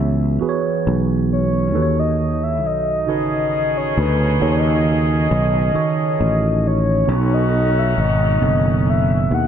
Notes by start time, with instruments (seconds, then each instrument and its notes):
Already playing: tine electric piano E3 B3 F#4 G#4 C#5
0.00 fretless electric bass C#2
0.39 tine electric piano E3 B3 F#4 G#4 B4, muted fretless electric bass stroke
0.49 tine electric piano C#5
0.87 fretless electric bass B1
1.32 soft synth lead C#5
1.73 fretless electric bass D#2, tine electric piano D#3 D#4 F#4 A4 B4
1.82 tine electric piano C#5
1.99 soft synth lead D#5
2.43 soft synth lead E5
2.64 fretless electric bass B1, soft synth lead D#5
3.06 fretless electric bass A1, tine electric piano C#3 D#4 F#4 A4 B4, horn section C#4 D#4 G#4
3.77 soft synth lead C#5
3.98 fretless electric bass D2, soft synth lead B4
4.40 fretless electric bass D#2, tine electric piano D#3 D#4 F#4 A4 C#5
4.44 soft synth lead D#5
5.31 fretless electric bass B1
5.73 tine electric piano D#3 D#4 F#4 A4 C#5, muted fretless electric bass stroke
6.21 fretless electric bass A1
6.67 soft synth lead C#5
7.07 fretless electric bass B1, tine electric piano B2 B3 C#4 A4 C#5, horn section D#3 C#4 F#4
7.15 tine electric piano D#4
7.34 soft synth lead D#5
7.79 soft synth lead E5
7.98 fretless electric bass G#1, soft synth lead D#5
8.41 fretless electric bass F#1, tine electric piano B2 B3 D4 A4 C#5
8.49 tine electric piano D#3
8.90 soft synth lead E5
9.31 fretless electric bass D#2, soft synth lead F#5